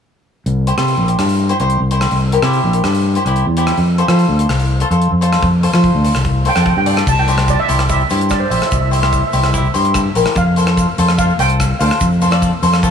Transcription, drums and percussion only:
0.46 closed hi-hat
0.67 closed hi-hat
0.78 cross-stick, closed hi-hat
0.88 closed hi-hat
1.08 closed hi-hat
1.19 cross-stick, closed hi-hat
1.29 closed hi-hat
1.49 closed hi-hat
1.60 closed hi-hat
1.70 closed hi-hat
1.91 closed hi-hat
2.01 cross-stick, closed hi-hat
2.11 closed hi-hat
2.32 closed hi-hat
2.42 cross-stick, closed hi-hat
2.53 closed hi-hat
2.73 closed hi-hat
2.84 cross-stick, closed hi-hat
2.95 closed hi-hat
3.15 closed hi-hat
3.26 closed hi-hat
3.36 closed hi-hat
3.57 closed hi-hat
3.67 cross-stick, closed hi-hat
3.77 closed hi-hat
3.98 closed hi-hat
4.08 cross-stick, closed hi-hat
4.19 closed hi-hat
4.39 closed hi-hat
4.49 cross-stick, closed hi-hat
4.59 closed hi-hat
4.80 closed hi-hat
4.91 closed hi-hat
5.02 closed hi-hat
5.22 closed hi-hat
5.33 cross-stick, closed hi-hat
5.43 kick, closed hi-hat
5.63 closed hi-hat
5.74 cross-stick, closed hi-hat
5.84 kick, closed hi-hat
6.05 closed hi-hat
6.15 cross-stick, closed hi-hat
6.25 kick, closed hi-hat
6.45 closed hi-hat
6.56 cross-stick, closed hi-hat
6.66 kick, closed hi-hat
6.86 closed hi-hat
6.97 cross-stick, closed hi-hat
7.07 kick, crash, shaker
7.28 closed hi-hat, shaker
7.38 cross-stick, closed hi-hat
7.48 kick, closed hi-hat, shaker
7.69 closed hi-hat, shaker
7.79 cross-stick, closed hi-hat, shaker
7.89 kick, closed hi-hat, shaker
8.00 shaker
8.10 closed hi-hat, shaker
8.21 closed hi-hat
8.30 kick, cross-stick, closed hi-hat, shaker
8.51 closed hi-hat, shaker
8.62 cross-stick, closed hi-hat, shaker
8.72 kick, closed hi-hat, shaker
8.93 closed hi-hat, shaker
9.03 cross-stick, closed hi-hat
9.12 kick, closed hi-hat, shaker
9.33 closed hi-hat, shaker
9.44 cross-stick, closed hi-hat, shaker
9.54 kick, closed hi-hat, shaker
9.75 closed hi-hat, shaker
9.85 closed hi-hat
9.94 kick, cross-stick, closed hi-hat, shaker
10.15 closed hi-hat, shaker
10.26 cross-stick, closed hi-hat, shaker
10.35 kick, closed hi-hat, shaker
10.56 closed hi-hat, shaker
10.67 cross-stick, closed hi-hat
10.77 kick, closed hi-hat, shaker
10.98 closed hi-hat, shaker
11.09 cross-stick, closed hi-hat, shaker
11.19 kick, closed hi-hat, shaker
11.30 shaker
11.39 closed hi-hat, shaker
11.50 closed hi-hat
11.60 kick, cross-stick, closed hi-hat, shaker
11.80 closed hi-hat, shaker
11.91 cross-stick, closed hi-hat, shaker
12.00 kick, closed hi-hat, shaker
12.12 shaker
12.21 closed hi-hat, shaker
12.32 cross-stick, closed hi-hat, shaker
12.42 kick, closed hi-hat, shaker
12.63 closed hi-hat, shaker
12.73 cross-stick, closed hi-hat, shaker
12.83 kick, closed hi-hat, shaker

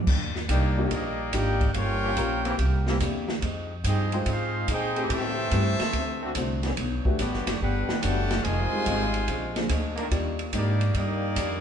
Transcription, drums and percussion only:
0.07 kick, crash
0.35 snare
0.49 kick, hi-hat pedal, ride
0.91 kick, ride
1.33 kick, hi-hat pedal, ride
1.61 kick, ride
1.74 kick, ride
2.17 kick, hi-hat pedal, ride
2.45 ride
2.59 kick, ride
2.87 snare
3.00 kick, hi-hat pedal, ride
3.28 snare
3.42 kick, ride
3.84 kick, hi-hat pedal, ride
4.12 ride
4.26 kick, ride
4.68 kick, hi-hat pedal, ride
4.96 ride
5.10 kick, ride
5.51 kick, hi-hat pedal, ride
5.80 snare, ride
5.93 kick, ride
6.35 kick, hi-hat pedal, ride
6.63 snare, ride
6.77 kick, ride
7.05 kick
7.19 kick, hi-hat pedal, ride
7.33 snare
7.47 snare, ride
7.61 kick
7.89 snare
8.03 kick, hi-hat pedal, ride
8.31 snare, ride
8.44 kick, ride
8.86 kick, hi-hat pedal, ride
9.14 ride
9.28 kick, ride
9.56 snare, ride
9.69 kick, hi-hat pedal, ride
9.97 ride
10.11 kick, ride
10.39 ride
10.53 kick, hi-hat pedal, ride
10.81 ride
10.94 kick, ride
11.36 kick, hi-hat pedal, ride

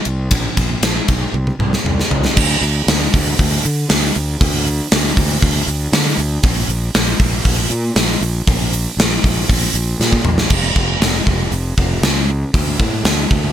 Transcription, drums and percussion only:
0.05 ride
0.31 kick, ride
0.57 kick, ride
0.83 snare, ride
1.08 kick, ride
1.34 high tom
1.47 high tom
1.60 mid tom
1.73 snare
1.86 mid tom
2.00 snare
2.11 floor tom
2.25 snare
2.37 kick, crash
2.63 open hi-hat
2.88 snare, open hi-hat
3.14 kick, open hi-hat
3.39 kick, open hi-hat
3.65 open hi-hat
3.89 snare, open hi-hat
4.15 open hi-hat
4.41 kick, open hi-hat
4.66 open hi-hat
4.92 snare, open hi-hat
5.17 kick, open hi-hat
5.42 kick, open hi-hat
5.68 open hi-hat
5.93 snare, open hi-hat
6.18 open hi-hat
6.43 kick, open hi-hat
6.69 open hi-hat
6.94 snare, open hi-hat
7.19 kick, open hi-hat
7.45 kick, open hi-hat
7.70 open hi-hat
7.96 snare, open hi-hat
8.22 open hi-hat
8.47 kick, open hi-hat
8.73 open hi-hat
8.99 snare, open hi-hat
9.24 kick, open hi-hat
9.49 kick, open hi-hat
9.75 open hi-hat
10.01 snare
10.12 kick
10.25 mid tom
10.38 snare
10.50 kick, crash
10.76 kick
11.01 snare, open hi-hat
11.27 kick
11.52 open hi-hat
11.78 kick
12.03 snare, open hi-hat
12.54 kick, open hi-hat
12.80 kick
13.05 snare, open hi-hat
13.31 kick

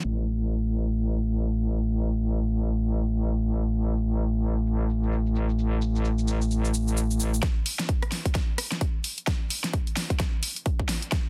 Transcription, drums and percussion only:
0.05 shaker
0.28 shaker
0.42 shaker
0.51 shaker
0.65 shaker
0.74 shaker
0.88 shaker
0.97 shaker
1.11 shaker
1.20 shaker
1.34 shaker
1.43 shaker
1.57 shaker
1.66 shaker
1.80 shaker
1.90 shaker
2.13 shaker
2.26 shaker
2.36 shaker
2.49 shaker
2.59 shaker
2.72 shaker
2.82 shaker
2.96 shaker
3.05 shaker
3.19 shaker
3.28 shaker
3.42 shaker
3.51 shaker
3.65 shaker
3.74 shaker
3.97 shaker
4.11 shaker
4.20 shaker
4.34 shaker
4.43 shaker
4.57 shaker
4.66 shaker
4.80 shaker
4.90 shaker
5.03 shaker
5.13 shaker
5.26 shaker
5.36 shaker
5.49 shaker
5.59 shaker
5.82 shaker
5.96 shaker
6.05 shaker
6.19 shaker
6.28 shaker
6.42 shaker
6.51 shaker
6.65 shaker
6.74 shaker
6.88 shaker
6.97 shaker
7.11 shaker
7.20 shaker
7.34 shaker
7.43 kick, snare, closed hi-hat
7.66 open hi-hat
7.79 snare, closed hi-hat
7.89 kick, closed hi-hat
8.02 cross-stick, closed hi-hat
8.12 snare, open hi-hat
8.26 kick, closed hi-hat
8.35 kick, snare, closed hi-hat
8.58 cross-stick, open hi-hat
8.72 snare, closed hi-hat
8.81 kick, closed hi-hat
9.04 open hi-hat
9.18 closed hi-hat
9.27 kick, snare, closed hi-hat
9.50 open hi-hat
9.64 snare, closed hi-hat
9.73 kick, closed hi-hat
9.87 closed hi-hat
9.97 snare, open hi-hat
10.10 kick, closed hi-hat
10.20 kick, snare, closed hi-hat
10.43 open hi-hat
10.56 closed hi-hat
10.66 kick, closed hi-hat
10.79 kick
10.89 snare, open hi-hat
11.02 closed hi-hat
11.12 kick, snare, closed hi-hat

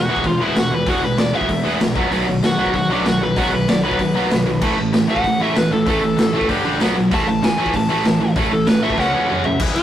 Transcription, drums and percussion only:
0.16 kick
0.24 kick, open hi-hat
0.55 snare, open hi-hat
0.86 kick, open hi-hat
1.17 snare, open hi-hat
1.41 kick
1.49 kick, open hi-hat
1.80 snare, open hi-hat
1.96 kick
2.11 open hi-hat
2.43 snare, open hi-hat
2.66 kick
2.74 kick, open hi-hat
3.05 snare, open hi-hat
3.36 kick, open hi-hat
3.68 snare, open hi-hat
3.91 kick
3.99 kick, open hi-hat
4.30 snare, open hi-hat
4.61 kick, crash
4.93 snare, open hi-hat
5.16 kick
5.24 kick, open hi-hat
5.55 snare, open hi-hat
5.87 kick, open hi-hat
6.18 snare, open hi-hat
6.41 kick
6.49 kick, open hi-hat
6.80 snare, open hi-hat
7.11 kick, open hi-hat
7.43 snare, open hi-hat
7.66 kick
7.74 kick, open hi-hat
8.04 snare, open hi-hat
8.36 kick, open hi-hat
8.66 snare, open hi-hat
8.90 kick
8.98 kick, snare
9.28 mid tom
9.44 floor tom
9.60 kick, crash
9.76 crash

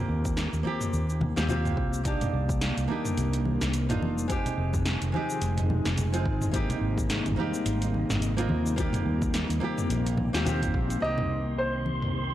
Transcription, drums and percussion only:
0.25 kick, shaker
0.37 snare, shaker
0.53 shaker
0.65 high conga
0.81 mid tom, shaker
0.93 shaker
1.10 shaker
1.21 high conga, low conga
1.37 snare, shaker
1.49 low conga, shaker
1.65 mid tom, shaker
1.77 kick
1.93 shaker
2.05 kick, closed hi-hat, shaker
2.21 closed hi-hat, mid tom, low conga, shaker
2.49 kick, shaker
2.61 snare, closed hi-hat, shaker
2.78 closed hi-hat, shaker
2.89 high conga
3.05 mid tom, shaker
3.17 closed hi-hat, shaker
3.33 closed hi-hat, shaker
3.45 high conga
3.61 snare, shaker
3.73 closed hi-hat, shaker
3.90 closed hi-hat, mid tom, shaker
4.02 high conga
4.18 shaker
4.30 kick, closed hi-hat, shaker
4.46 closed hi-hat, low conga, shaker
4.74 kick, mid tom, shaker
4.85 snare, closed hi-hat, shaker
5.02 closed hi-hat, shaker
5.14 high conga
5.30 shaker
5.42 closed hi-hat, shaker
5.58 closed hi-hat, mid tom, shaker
5.70 high conga, low conga
5.85 snare, shaker
5.98 closed hi-hat, low conga, shaker
6.14 closed hi-hat, shaker
6.26 kick
6.41 mid tom, shaker
6.54 kick, closed hi-hat, shaker
6.70 closed hi-hat, low conga, shaker
6.98 kick, shaker
7.10 snare, closed hi-hat, shaker
7.26 closed hi-hat, mid tom, shaker
7.37 high conga
7.54 shaker
7.66 closed hi-hat, shaker
7.82 closed hi-hat, shaker
7.94 high conga
8.10 snare, mid tom, shaker
8.22 closed hi-hat, shaker
8.38 closed hi-hat, shaker
8.49 high conga
8.66 shaker
8.78 kick, closed hi-hat, shaker
8.93 closed hi-hat, mid tom, low conga, shaker
9.22 kick, shaker
9.34 snare, closed hi-hat, shaker
9.50 closed hi-hat, shaker
9.61 high conga
9.78 mid tom, shaker
9.90 closed hi-hat, shaker
10.07 closed hi-hat, shaker
10.17 high conga, low conga
10.35 snare, shaker
10.46 closed hi-hat, low conga, shaker
10.62 kick, closed hi-hat, mid tom, shaker
10.74 kick
10.90 closed hi-hat, shaker
11.18 mid tom, low conga
11.86 high conga
12.02 mid tom

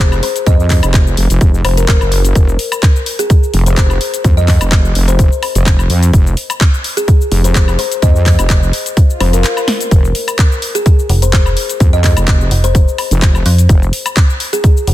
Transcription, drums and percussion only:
0.12 high woodblock, shaker
0.23 open hi-hat
0.36 closed hi-hat, shaker
0.47 kick, closed hi-hat, shaker
0.60 shaker
0.70 kick, clap, open hi-hat
0.83 closed hi-hat, high woodblock, shaker
0.94 kick, clap, closed hi-hat, shaker
1.07 shaker
1.17 open hi-hat
1.30 closed hi-hat, shaker
1.41 kick, closed hi-hat, shaker
1.54 shaker
1.65 open hi-hat, high woodblock
1.77 closed hi-hat, shaker
1.88 kick, clap, closed hi-hat, shaker
2.01 high woodblock, shaker
2.12 open hi-hat
2.25 closed hi-hat, shaker
2.35 kick, closed hi-hat, shaker
2.49 shaker
2.59 open hi-hat
2.72 closed hi-hat, high woodblock, shaker
2.83 kick, clap, closed hi-hat, shaker
2.96 shaker
3.06 open hi-hat
3.19 closed hi-hat, shaker
3.30 kick, closed hi-hat, shaker
3.43 shaker
3.54 open hi-hat
3.66 closed hi-hat, shaker
3.77 kick, clap, closed hi-hat, shaker
3.90 high woodblock, shaker
4.01 open hi-hat
4.14 closed hi-hat, shaker
4.24 kick, closed hi-hat, shaker
4.38 shaker
4.48 kick, clap, open hi-hat
4.61 closed hi-hat, high woodblock, shaker
4.72 kick, clap, closed hi-hat, shaker
4.85 shaker
4.95 open hi-hat
5.08 closed hi-hat, shaker
5.19 kick, closed hi-hat, shaker
5.32 shaker
5.43 open hi-hat, high woodblock
5.55 closed hi-hat, shaker
5.66 kick, clap, closed hi-hat, shaker
5.79 high woodblock, shaker
5.90 open hi-hat
6.03 closed hi-hat, shaker
6.13 kick, closed hi-hat, shaker
6.27 shaker
6.37 open hi-hat
6.50 closed hi-hat, high woodblock, shaker
6.61 kick, clap, closed hi-hat, shaker
6.74 shaker
6.84 open hi-hat
6.97 closed hi-hat, shaker
7.08 kick, closed hi-hat, shaker
7.21 shaker
7.32 open hi-hat
7.44 closed hi-hat, shaker
7.55 kick, clap, closed hi-hat, shaker
7.68 high woodblock, shaker
7.79 open hi-hat
7.92 closed hi-hat, shaker
8.02 kick, closed hi-hat, shaker
8.16 shaker
8.26 kick, clap, open hi-hat
8.39 closed hi-hat, high woodblock, shaker
8.50 kick, clap, closed hi-hat, shaker
8.63 shaker
8.73 open hi-hat
8.86 closed hi-hat, shaker
8.97 kick, closed hi-hat, shaker
9.10 shaker
9.21 open hi-hat, high woodblock
9.33 closed hi-hat, shaker
9.44 clap, closed hi-hat, shaker
9.57 high woodblock, shaker
9.68 snare, open hi-hat
9.81 closed hi-hat, shaker
9.91 kick, closed hi-hat, shaker
10.05 shaker
10.15 open hi-hat
10.28 closed hi-hat, high woodblock, shaker
10.39 kick, clap, closed hi-hat, shaker
10.52 shaker
10.62 open hi-hat
10.75 closed hi-hat, shaker
10.86 kick, closed hi-hat, shaker
10.99 shaker
11.09 open hi-hat
11.22 closed hi-hat, shaker
11.33 kick, clap, closed hi-hat, shaker
11.46 high woodblock, shaker
11.57 open hi-hat
11.69 closed hi-hat, shaker
11.80 kick, closed hi-hat, shaker
11.94 shaker
12.04 kick, clap, open hi-hat
12.17 closed hi-hat, high woodblock, shaker
12.28 kick, clap, closed hi-hat, shaker
12.41 shaker
12.51 open hi-hat
12.64 closed hi-hat, shaker
12.75 kick, closed hi-hat, shaker
12.88 shaker
12.98 open hi-hat, high woodblock
13.11 closed hi-hat, shaker
13.22 kick, clap, closed hi-hat, shaker
13.35 high woodblock, shaker
13.46 open hi-hat
13.58 closed hi-hat, shaker
13.69 kick, closed hi-hat, shaker
13.83 shaker
13.93 open hi-hat
14.06 closed hi-hat, high woodblock, shaker
14.17 kick, clap, closed hi-hat, shaker
14.30 shaker
14.40 open hi-hat
14.53 closed hi-hat, shaker
14.64 kick, closed hi-hat, shaker
14.77 shaker
14.87 open hi-hat

